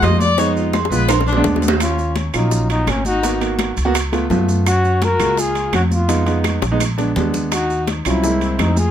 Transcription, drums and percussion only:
0.02 cowbell, high conga, low timbale, low agogo, claves, maracas
0.21 high conga, maracas
0.38 cowbell, high bongo, low agogo, maracas
0.56 high conga, maracas
0.73 cowbell, high bongo, high conga, low timbale, low agogo, claves, maracas
0.85 high bongo
0.91 high conga, maracas
1.08 cowbell, low bongo, high conga, high timbale, low agogo, claves, maracas
1.21 low bongo
1.27 high conga, low agogo, maracas
1.33 low bongo, low timbale
1.44 cowbell, low bongo, high conga, maracas
1.56 low bongo, low timbale
1.62 cowbell, high conga, maracas
1.68 low bongo, low timbale
1.80 high bongo, high conga, high timbale, claves, maracas
1.98 high bongo, high conga, maracas
2.16 high bongo, high conga, high timbale, maracas
2.34 high timbale, claves, maracas
2.51 high bongo, high conga, maracas
2.69 high bongo, high conga, high timbale, maracas
2.87 high bongo, low bongo, high conga, high timbale, low timbale, claves, maracas
3.05 high bongo, high conga, maracas
3.23 high bongo, high conga, high timbale, maracas
3.41 high bongo, high conga, high timbale, maracas
3.59 high bongo, high conga, high timbale, claves, maracas
3.77 high conga, high timbale, maracas
3.94 high bongo, high conga, high timbale, claves, maracas
4.12 high bongo, high conga, high timbale, maracas
4.30 high bongo, low bongo, high conga, low timbale, maracas
4.49 high bongo, high conga, maracas
4.66 high bongo, high conga, high timbale, claves, maracas
4.84 high bongo, high conga, maracas
5.02 high bongo, high conga, high timbale, maracas
5.20 high timbale, claves, maracas
5.38 high bongo, high conga, maracas
5.55 high bongo, high conga, high timbale, maracas
5.73 high bongo, low bongo, high conga, high timbale, low timbale, claves, maracas
5.91 high bongo, high conga, maracas
6.09 high bongo, high conga, high timbale, maracas
6.27 high bongo, high conga, high timbale, maracas
6.44 high bongo, high conga, high timbale, claves, maracas
6.62 high bongo, high conga, high timbale, maracas
6.80 high conga, high timbale, claves, maracas
6.98 low bongo, high timbale, maracas
7.16 low conga, low timbale, maracas
7.34 low bongo, low conga, maracas
7.52 high bongo, high conga, high timbale, claves, maracas
7.70 high bongo, high conga, maracas
7.87 high bongo, high conga, high timbale, maracas
8.05 high timbale, claves, maracas
8.24 high bongo, high conga, maracas
8.41 high bongo, high conga, high timbale, maracas
8.59 high bongo, low bongo, high conga, high timbale, low timbale, claves, maracas
8.77 high bongo, high conga, maracas

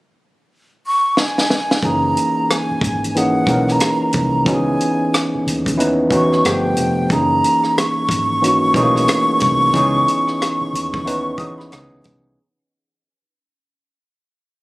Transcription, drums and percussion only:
1.17 snare
1.38 snare
1.50 snare
1.71 snare
1.83 kick, closed hi-hat
2.17 closed hi-hat
2.51 cross-stick, closed hi-hat
2.81 kick, closed hi-hat
3.04 closed hi-hat
3.16 closed hi-hat
3.47 kick, closed hi-hat
3.68 cross-stick, closed hi-hat
3.80 cross-stick, closed hi-hat
4.13 kick, closed hi-hat
4.46 kick, closed hi-hat
4.80 closed hi-hat
5.14 cross-stick, closed hi-hat
5.47 closed hi-hat
5.66 kick, closed hi-hat
5.80 closed hi-hat
6.11 kick, closed hi-hat
6.33 cross-stick
6.45 cross-stick, closed hi-hat
6.77 closed hi-hat
7.10 kick, closed hi-hat
7.44 closed hi-hat
7.64 cross-stick
7.78 cross-stick, closed hi-hat
8.09 kick, closed hi-hat
8.44 closed hi-hat
8.74 kick, closed hi-hat
8.96 cross-stick, closed hi-hat
9.08 cross-stick, closed hi-hat
9.40 kick, closed hi-hat
9.74 kick, closed hi-hat
10.08 closed hi-hat
10.28 cross-stick
10.42 cross-stick, closed hi-hat
10.75 closed hi-hat
10.94 kick
11.07 closed hi-hat
11.38 kick, closed hi-hat
11.60 cross-stick
11.72 cross-stick, closed hi-hat
12.04 kick, closed hi-hat

